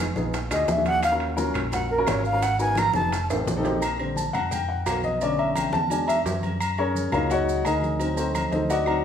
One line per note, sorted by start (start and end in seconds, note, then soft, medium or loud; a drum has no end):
0.00 0.11 F1 medium
0.16 0.49 A#1 loud
0.16 0.33 B3 medium
0.16 0.34 D#4 medium
0.16 0.33 F4 medium
0.16 0.34 G#4 medium
0.16 high bongo soft
0.16 high conga loud
0.16 maracas soft
0.34 high bongo medium
0.34 high conga soft
0.34 high timbale medium
0.34 maracas medium
0.51 0.67 D2 medium
0.51 0.69 D4 medium
0.51 0.69 F4 medium
0.51 0.70 F#4 medium
0.51 0.70 G#4 medium
0.51 0.71 D#5 medium
0.51 high bongo soft
0.51 high conga soft
0.51 high timbale medium
0.51 claves medium
0.51 maracas medium
0.68 1.50 D#2 loud
0.68 0.86 E5 medium
0.68 high bongo medium
0.68 low bongo medium
0.68 high conga medium
0.68 maracas medium
0.77 1.01 D4 medium
0.77 1.02 F4 medium
0.77 1.02 F#4 medium
0.77 1.02 G#4 medium
0.85 1.03 F#5 loud
0.85 high bongo soft
0.85 high conga loud
0.85 high timbale medium
0.85 maracas soft
1.03 1.14 F5 loud
1.03 high bongo medium
1.03 high conga soft
1.03 high timbale loud
1.03 claves medium
1.03 maracas medium
1.11 1.30 C#4 medium
1.11 1.30 F4 medium
1.11 1.30 F#4 medium
1.11 1.30 A#4 medium
1.20 high conga soft
1.20 high timbale medium
1.36 1.62 C#4 medium
1.36 1.62 F4 medium
1.36 1.62 F#4 medium
1.36 1.62 A#4 loud
1.36 high bongo medium
1.36 high conga medium
1.36 maracas medium
1.54 2.04 A#1 medium
1.54 high conga soft
1.54 low conga medium
1.54 high timbale loud
1.54 claves medium
1.54 maracas soft
1.72 1.91 C#4 medium
1.72 1.91 F4 medium
1.72 1.91 F#4 medium
1.72 1.91 A#4 medium
1.72 1.89 F#5 medium
1.72 high bongo medium
1.72 high conga soft
1.72 low conga medium
1.72 high timbale medium
1.72 maracas medium
1.90 2.11 A#4 medium
1.90 high conga soft
1.98 2.23 C#4 medium
1.98 2.23 F4 medium
1.98 2.23 F#4 medium
1.98 2.23 A#4 loud
2.07 2.89 G#1 loud
2.07 2.25 C#5 medium
2.07 high bongo medium
2.07 low bongo medium
2.07 high conga soft
2.07 high timbale loud
2.07 claves medium
2.07 maracas medium
2.25 2.44 F5 loud
2.25 maracas soft
2.33 2.42 C#4 medium
2.33 2.42 F4 medium
2.33 2.42 F#4 medium
2.33 2.42 A#4 medium
2.41 2.60 F#5 medium
2.41 high bongo medium
2.41 high conga soft
2.41 high timbale medium
2.41 maracas medium
2.58 2.84 B3 medium
2.58 2.84 D#4 medium
2.58 2.84 F#4 medium
2.58 2.84 A#4 medium
2.58 2.80 G#5 loud
2.58 high conga soft
2.58 maracas medium
2.75 2.94 A#5 loud
2.75 high bongo medium
2.75 high conga medium
2.75 high timbale medium
2.75 claves medium
2.75 maracas medium
2.94 3.27 F1 loud
2.94 3.12 B3 medium
2.94 3.12 D#4 medium
2.94 3.12 F#4 medium
2.94 3.12 G#4 medium
2.94 3.27 A5 medium
2.94 high bongo soft
2.94 high conga loud
2.94 maracas soft
3.10 high bongo medium
3.10 high conga soft
3.10 high timbale medium
3.10 maracas medium
3.29 3.46 A1 medium
3.29 3.48 C4 medium
3.29 3.48 D#4 medium
3.29 3.48 G4 medium
3.29 3.48 A4 medium
3.29 high bongo soft
3.29 high conga soft
3.29 high timbale medium
3.29 claves medium
3.29 maracas medium
3.46 4.28 A#1 medium
3.46 high bongo medium
3.46 low bongo medium
3.46 high conga medium
3.46 maracas medium
3.56 3.80 C4 medium
3.56 3.81 D#4 medium
3.56 3.80 G4 medium
3.56 3.81 A4 loud
3.63 high bongo soft
3.63 high conga loud
3.63 low timbale medium
3.63 maracas soft
3.81 high conga soft
3.81 low agogo loud
3.81 claves medium
3.81 maracas medium
3.99 4.23 D3 medium
3.99 4.22 G3 medium
3.99 4.23 C4 medium
3.99 low agogo medium
4.16 4.34 A5 medium
4.16 high conga medium
4.16 maracas medium
4.33 4.83 F2 medium
4.33 4.51 F#5 medium
4.33 high conga soft
4.33 low conga medium
4.33 low agogo medium
4.33 claves medium
4.33 maracas soft
4.51 4.68 G5 medium
4.51 high conga soft
4.51 low conga medium
4.51 low agogo medium
4.51 maracas medium
4.69 4.86 F#5 medium
4.69 high conga soft
4.86 5.68 B1 medium
4.86 5.03 F5 medium
4.86 high conga soft
4.86 low timbale medium
4.86 low agogo loud
4.86 claves medium
4.86 maracas medium
5.03 5.21 D#5 medium
5.03 high conga medium
5.03 maracas soft
5.21 5.71 D3 medium
5.21 5.71 A3 medium
5.21 5.72 C#4 medium
5.21 5.39 D5 medium
5.21 high conga soft
5.21 low agogo medium
5.21 maracas medium
5.38 5.56 E5 medium
5.38 high conga soft
5.38 low agogo medium
5.55 5.73 G5 medium
5.55 high conga medium
5.55 low agogo loud
5.55 claves medium
5.55 maracas medium
5.73 6.22 E2 medium
5.73 5.90 A5 loud
5.73 high conga loud
5.73 maracas soft
5.90 6.14 F#3 medium
5.90 6.14 G#3 soft
5.90 6.14 D4 medium
5.90 6.08 G#5 medium
5.90 high conga soft
5.90 low agogo medium
5.90 maracas medium
6.08 6.19 E5 loud
6.08 high conga soft
6.08 low agogo loud
6.08 claves medium
6.08 maracas medium
6.26 7.07 F#2 medium
6.26 high conga medium
6.26 low timbale medium
6.26 maracas medium
6.43 high conga medium
6.43 low agogo medium
6.43 maracas soft
6.60 high conga soft
6.60 low agogo loud
6.60 claves medium
6.60 maracas medium
6.78 7.11 C#4 medium
6.78 7.11 G#4 medium
6.78 7.11 A#4 medium
6.78 7.11 C#5 loud
6.78 high conga soft
6.78 low agogo medium
6.95 high conga medium
6.95 maracas medium
7.12 7.62 C#2 loud
7.12 7.62 F#3 medium
7.12 7.62 G#3 soft
7.12 7.63 A#3 medium
7.12 7.63 D#4 medium
7.12 7.30 F4 medium
7.12 7.30 A#4 medium
7.12 7.30 C#5 medium
7.12 7.30 F5 medium
7.12 high conga soft
7.12 low conga medium
7.12 low agogo loud
7.12 claves medium
7.12 maracas soft
7.30 7.63 F#4 medium
7.30 7.63 C#5 medium
7.30 7.63 D#5 medium
7.30 7.63 F#5 medium
7.30 high conga soft
7.30 low agogo medium
7.30 maracas medium
7.47 high conga soft
7.47 maracas medium
7.65 8.46 D2 loud
7.65 7.99 D#4 medium
7.65 7.98 G#4 medium
7.65 7.98 A#4 medium
7.65 8.14 D#5 medium
7.65 high conga soft
7.65 low agogo loud
7.65 claves medium
7.65 maracas medium
7.82 high conga medium
7.82 maracas soft
7.99 8.85 F#3 medium
7.99 8.16 C4 medium
7.99 8.51 D#4 medium
7.99 low agogo medium
7.99 maracas medium
8.17 8.50 C4 medium
8.17 8.50 F#4 medium
8.17 8.50 A4 medium
8.17 8.50 C5 medium
8.17 high conga soft
8.17 low agogo medium
8.17 maracas medium
8.35 high conga medium
8.35 low agogo loud
8.35 claves medium
8.35 maracas medium
8.52 9.01 D2 loud
8.52 8.69 D#4 medium
8.52 8.69 A4 medium
8.52 8.69 C5 medium
8.52 8.69 D#5 medium
8.52 high conga loud
8.52 maracas soft
8.70 9.02 F#4 medium
8.70 9.03 D5 medium
8.70 9.03 D#5 medium
8.70 9.02 F#5 medium
8.70 high conga soft
8.70 low agogo medium
8.70 maracas medium
8.86 9.02 F#3 medium
8.86 9.03 C4 medium
8.86 9.03 D#4 medium
8.86 high conga soft
8.86 low agogo loud
8.86 claves medium